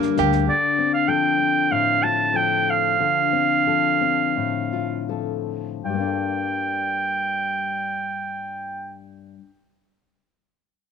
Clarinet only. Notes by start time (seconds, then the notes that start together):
0.49 D5
0.94 F5
1.08 G5
1.72 F5
2.03 A5
2.36 G5
2.70 F5
5.85 G5